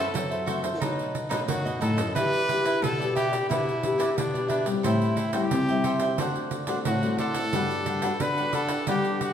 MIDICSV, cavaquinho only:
0, 0, Header, 1, 2, 480
1, 0, Start_track
1, 0, Key_signature, 1, "major"
1, 0, Tempo, 671892
1, 1540, Time_signature, 4, 2, 24, 8
1, 6666, End_track
2, 0, Start_track
2, 0, Title_t, "Cavaquinho"
2, 0, Program_c, 0, 24
2, 215, Note_on_c, 0, 76, 44
2, 223, Note_on_c, 0, 72, 37
2, 232, Note_on_c, 0, 69, 33
2, 325, Note_off_c, 0, 69, 0
2, 329, Note_off_c, 0, 76, 0
2, 330, Note_off_c, 0, 72, 0
2, 330, Note_on_c, 0, 66, 70
2, 334, Note_on_c, 0, 69, 72
2, 339, Note_on_c, 0, 72, 80
2, 344, Note_on_c, 0, 76, 71
2, 436, Note_off_c, 0, 76, 0
2, 443, Note_off_c, 0, 72, 0
2, 445, Note_on_c, 0, 76, 43
2, 446, Note_off_c, 0, 66, 0
2, 448, Note_off_c, 0, 69, 0
2, 451, Note_on_c, 0, 72, 45
2, 460, Note_on_c, 0, 69, 38
2, 564, Note_off_c, 0, 76, 0
2, 567, Note_off_c, 0, 72, 0
2, 571, Note_off_c, 0, 69, 0
2, 572, Note_on_c, 0, 63, 64
2, 579, Note_on_c, 0, 69, 68
2, 583, Note_on_c, 0, 71, 64
2, 587, Note_on_c, 0, 75, 76
2, 914, Note_off_c, 0, 63, 0
2, 918, Note_off_c, 0, 69, 0
2, 921, Note_off_c, 0, 71, 0
2, 923, Note_on_c, 0, 63, 72
2, 924, Note_off_c, 0, 75, 0
2, 926, Note_on_c, 0, 69, 71
2, 930, Note_on_c, 0, 71, 76
2, 933, Note_on_c, 0, 75, 81
2, 996, Note_off_c, 0, 63, 0
2, 998, Note_off_c, 0, 69, 0
2, 999, Note_off_c, 0, 71, 0
2, 1001, Note_off_c, 0, 75, 0
2, 1181, Note_on_c, 0, 75, 47
2, 1187, Note_on_c, 0, 71, 45
2, 1195, Note_on_c, 0, 69, 36
2, 1286, Note_off_c, 0, 69, 0
2, 1289, Note_on_c, 0, 63, 61
2, 1291, Note_off_c, 0, 71, 0
2, 1291, Note_off_c, 0, 75, 0
2, 1295, Note_on_c, 0, 69, 68
2, 1300, Note_on_c, 0, 71, 68
2, 1305, Note_on_c, 0, 75, 76
2, 1395, Note_off_c, 0, 75, 0
2, 1403, Note_off_c, 0, 71, 0
2, 1404, Note_on_c, 0, 75, 45
2, 1405, Note_off_c, 0, 63, 0
2, 1408, Note_off_c, 0, 69, 0
2, 1412, Note_on_c, 0, 71, 48
2, 1419, Note_on_c, 0, 69, 39
2, 1522, Note_off_c, 0, 75, 0
2, 1526, Note_off_c, 0, 71, 0
2, 1530, Note_off_c, 0, 69, 0
2, 1536, Note_on_c, 0, 64, 64
2, 1541, Note_on_c, 0, 67, 67
2, 1545, Note_on_c, 0, 71, 74
2, 1550, Note_on_c, 0, 74, 83
2, 1762, Note_off_c, 0, 64, 0
2, 1768, Note_off_c, 0, 67, 0
2, 1770, Note_on_c, 0, 64, 49
2, 1772, Note_off_c, 0, 71, 0
2, 1775, Note_off_c, 0, 74, 0
2, 1776, Note_on_c, 0, 67, 55
2, 1782, Note_on_c, 0, 71, 60
2, 1785, Note_on_c, 0, 74, 57
2, 1881, Note_off_c, 0, 64, 0
2, 1885, Note_off_c, 0, 67, 0
2, 1888, Note_off_c, 0, 71, 0
2, 1889, Note_on_c, 0, 64, 68
2, 1893, Note_off_c, 0, 74, 0
2, 1894, Note_on_c, 0, 67, 69
2, 1896, Note_on_c, 0, 71, 77
2, 1901, Note_on_c, 0, 74, 66
2, 1958, Note_off_c, 0, 64, 0
2, 1961, Note_off_c, 0, 67, 0
2, 1962, Note_off_c, 0, 71, 0
2, 1964, Note_off_c, 0, 74, 0
2, 2139, Note_on_c, 0, 74, 41
2, 2146, Note_on_c, 0, 71, 36
2, 2153, Note_on_c, 0, 67, 32
2, 2249, Note_off_c, 0, 74, 0
2, 2250, Note_off_c, 0, 67, 0
2, 2252, Note_on_c, 0, 64, 71
2, 2253, Note_off_c, 0, 71, 0
2, 2258, Note_on_c, 0, 67, 71
2, 2264, Note_on_c, 0, 71, 77
2, 2270, Note_on_c, 0, 74, 84
2, 2360, Note_off_c, 0, 74, 0
2, 2366, Note_off_c, 0, 64, 0
2, 2368, Note_on_c, 0, 74, 43
2, 2369, Note_off_c, 0, 67, 0
2, 2370, Note_off_c, 0, 71, 0
2, 2379, Note_on_c, 0, 71, 40
2, 2385, Note_on_c, 0, 67, 37
2, 2484, Note_off_c, 0, 74, 0
2, 2489, Note_off_c, 0, 71, 0
2, 2492, Note_off_c, 0, 67, 0
2, 2493, Note_on_c, 0, 64, 65
2, 2500, Note_on_c, 0, 67, 66
2, 2507, Note_on_c, 0, 71, 67
2, 2513, Note_on_c, 0, 74, 65
2, 2834, Note_off_c, 0, 64, 0
2, 2839, Note_off_c, 0, 67, 0
2, 2842, Note_off_c, 0, 71, 0
2, 2843, Note_on_c, 0, 64, 61
2, 2845, Note_off_c, 0, 74, 0
2, 2848, Note_on_c, 0, 67, 69
2, 2851, Note_on_c, 0, 71, 77
2, 2854, Note_on_c, 0, 74, 77
2, 2915, Note_off_c, 0, 64, 0
2, 2917, Note_off_c, 0, 67, 0
2, 2919, Note_off_c, 0, 71, 0
2, 2920, Note_off_c, 0, 74, 0
2, 3098, Note_on_c, 0, 74, 42
2, 3105, Note_on_c, 0, 71, 47
2, 3113, Note_on_c, 0, 67, 42
2, 3201, Note_off_c, 0, 67, 0
2, 3203, Note_on_c, 0, 64, 73
2, 3206, Note_off_c, 0, 71, 0
2, 3208, Note_off_c, 0, 74, 0
2, 3210, Note_on_c, 0, 67, 65
2, 3215, Note_on_c, 0, 71, 63
2, 3219, Note_on_c, 0, 74, 67
2, 3311, Note_off_c, 0, 74, 0
2, 3320, Note_off_c, 0, 71, 0
2, 3320, Note_on_c, 0, 74, 46
2, 3321, Note_off_c, 0, 64, 0
2, 3324, Note_off_c, 0, 67, 0
2, 3329, Note_on_c, 0, 71, 41
2, 3335, Note_on_c, 0, 67, 39
2, 3439, Note_off_c, 0, 74, 0
2, 3444, Note_off_c, 0, 71, 0
2, 3447, Note_off_c, 0, 67, 0
2, 3452, Note_on_c, 0, 69, 76
2, 3458, Note_on_c, 0, 72, 75
2, 3463, Note_on_c, 0, 76, 77
2, 3468, Note_on_c, 0, 79, 74
2, 3678, Note_off_c, 0, 69, 0
2, 3684, Note_off_c, 0, 72, 0
2, 3687, Note_on_c, 0, 69, 52
2, 3689, Note_off_c, 0, 76, 0
2, 3693, Note_off_c, 0, 79, 0
2, 3693, Note_on_c, 0, 72, 49
2, 3698, Note_on_c, 0, 76, 50
2, 3703, Note_on_c, 0, 79, 50
2, 3796, Note_off_c, 0, 69, 0
2, 3797, Note_off_c, 0, 72, 0
2, 3803, Note_off_c, 0, 76, 0
2, 3804, Note_on_c, 0, 69, 65
2, 3805, Note_off_c, 0, 79, 0
2, 3806, Note_on_c, 0, 72, 66
2, 3811, Note_on_c, 0, 76, 70
2, 3813, Note_on_c, 0, 79, 71
2, 3875, Note_off_c, 0, 69, 0
2, 3876, Note_off_c, 0, 72, 0
2, 3879, Note_off_c, 0, 76, 0
2, 3880, Note_off_c, 0, 79, 0
2, 4061, Note_on_c, 0, 79, 40
2, 4071, Note_on_c, 0, 76, 37
2, 4076, Note_on_c, 0, 72, 35
2, 4169, Note_off_c, 0, 72, 0
2, 4170, Note_off_c, 0, 79, 0
2, 4173, Note_on_c, 0, 69, 70
2, 4175, Note_off_c, 0, 76, 0
2, 4177, Note_on_c, 0, 72, 77
2, 4184, Note_on_c, 0, 76, 82
2, 4188, Note_on_c, 0, 79, 80
2, 4283, Note_off_c, 0, 79, 0
2, 4286, Note_off_c, 0, 69, 0
2, 4288, Note_off_c, 0, 72, 0
2, 4291, Note_on_c, 0, 79, 48
2, 4292, Note_off_c, 0, 76, 0
2, 4299, Note_on_c, 0, 76, 45
2, 4307, Note_on_c, 0, 72, 39
2, 4405, Note_off_c, 0, 79, 0
2, 4409, Note_off_c, 0, 76, 0
2, 4413, Note_off_c, 0, 72, 0
2, 4419, Note_on_c, 0, 62, 66
2, 4425, Note_on_c, 0, 72, 67
2, 4430, Note_on_c, 0, 74, 66
2, 4435, Note_on_c, 0, 78, 76
2, 4760, Note_off_c, 0, 62, 0
2, 4766, Note_off_c, 0, 72, 0
2, 4768, Note_off_c, 0, 74, 0
2, 4769, Note_off_c, 0, 78, 0
2, 4769, Note_on_c, 0, 62, 63
2, 4775, Note_on_c, 0, 72, 71
2, 4776, Note_on_c, 0, 74, 78
2, 4778, Note_on_c, 0, 78, 91
2, 4838, Note_off_c, 0, 62, 0
2, 4841, Note_off_c, 0, 72, 0
2, 4842, Note_off_c, 0, 74, 0
2, 4842, Note_off_c, 0, 78, 0
2, 5018, Note_on_c, 0, 78, 49
2, 5026, Note_on_c, 0, 74, 41
2, 5035, Note_on_c, 0, 72, 39
2, 5125, Note_off_c, 0, 72, 0
2, 5129, Note_off_c, 0, 78, 0
2, 5130, Note_on_c, 0, 62, 64
2, 5133, Note_off_c, 0, 74, 0
2, 5134, Note_on_c, 0, 72, 68
2, 5141, Note_on_c, 0, 74, 73
2, 5145, Note_on_c, 0, 78, 73
2, 5242, Note_off_c, 0, 78, 0
2, 5245, Note_off_c, 0, 62, 0
2, 5247, Note_off_c, 0, 72, 0
2, 5250, Note_off_c, 0, 74, 0
2, 5250, Note_on_c, 0, 78, 51
2, 5259, Note_on_c, 0, 74, 41
2, 5267, Note_on_c, 0, 72, 40
2, 5365, Note_off_c, 0, 78, 0
2, 5370, Note_off_c, 0, 74, 0
2, 5374, Note_off_c, 0, 72, 0
2, 5378, Note_on_c, 0, 62, 77
2, 5382, Note_on_c, 0, 67, 70
2, 5387, Note_on_c, 0, 71, 76
2, 5394, Note_on_c, 0, 78, 80
2, 5603, Note_off_c, 0, 62, 0
2, 5611, Note_off_c, 0, 67, 0
2, 5611, Note_on_c, 0, 62, 51
2, 5614, Note_off_c, 0, 71, 0
2, 5618, Note_off_c, 0, 78, 0
2, 5619, Note_on_c, 0, 67, 55
2, 5624, Note_on_c, 0, 71, 56
2, 5629, Note_on_c, 0, 78, 50
2, 5719, Note_off_c, 0, 62, 0
2, 5723, Note_off_c, 0, 67, 0
2, 5726, Note_off_c, 0, 71, 0
2, 5727, Note_on_c, 0, 62, 70
2, 5728, Note_off_c, 0, 78, 0
2, 5732, Note_on_c, 0, 67, 66
2, 5734, Note_on_c, 0, 71, 67
2, 5737, Note_on_c, 0, 78, 83
2, 5798, Note_off_c, 0, 62, 0
2, 5800, Note_off_c, 0, 67, 0
2, 5801, Note_off_c, 0, 71, 0
2, 5803, Note_off_c, 0, 78, 0
2, 5978, Note_on_c, 0, 78, 39
2, 5988, Note_on_c, 0, 71, 41
2, 5996, Note_on_c, 0, 67, 38
2, 6088, Note_off_c, 0, 67, 0
2, 6088, Note_on_c, 0, 62, 67
2, 6090, Note_off_c, 0, 78, 0
2, 6093, Note_off_c, 0, 71, 0
2, 6097, Note_on_c, 0, 67, 66
2, 6102, Note_on_c, 0, 71, 82
2, 6105, Note_on_c, 0, 78, 73
2, 6196, Note_off_c, 0, 78, 0
2, 6203, Note_off_c, 0, 71, 0
2, 6205, Note_off_c, 0, 62, 0
2, 6205, Note_on_c, 0, 78, 50
2, 6209, Note_off_c, 0, 67, 0
2, 6212, Note_on_c, 0, 71, 46
2, 6221, Note_on_c, 0, 67, 42
2, 6323, Note_off_c, 0, 78, 0
2, 6327, Note_off_c, 0, 71, 0
2, 6331, Note_off_c, 0, 67, 0
2, 6332, Note_on_c, 0, 62, 59
2, 6339, Note_on_c, 0, 67, 65
2, 6345, Note_on_c, 0, 71, 72
2, 6348, Note_on_c, 0, 78, 70
2, 6666, Note_off_c, 0, 62, 0
2, 6666, Note_off_c, 0, 67, 0
2, 6666, Note_off_c, 0, 71, 0
2, 6666, Note_off_c, 0, 78, 0
2, 6666, End_track
0, 0, End_of_file